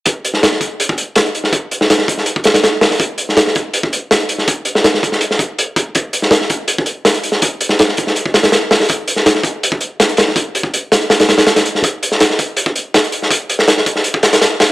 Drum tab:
HH |x-x-x-x-x-x-xxx-|x-x-x-x-x-xxx-o-|x-x-x-x-x-x-xxx-|x-x-x-x-x-x-x-x-|
SD |---ooo------o--o|---ooo-o--ooo-oo|---ooo------o--o|---ooo-o-o------|
BD |o-----o--o------|o-----o--o------|o-----o--o------|o-----o---o---o-|

HH |x-x-x-x-x-x-xxx-|x-x-x-x-x-xxx-o-|x-x-x-x-x-x-xxx-|x-x-x-xxxxxxxxx-|
SD |---ooo------o--o|---ooo-o--ooo-oo|---ooo------o-oo|------o-oooooo-o|
BD |o-----o--o------|o-----o--o------|o-----o--o------|o--o------------|

HH |x-x-x-x-x-x-xxx-|x-x-x-x-x-xxx-o-|
SD |---ooo------o--o|---ooo-o--ooo-o-|
BD |o-----o--o------|o-----o--o------|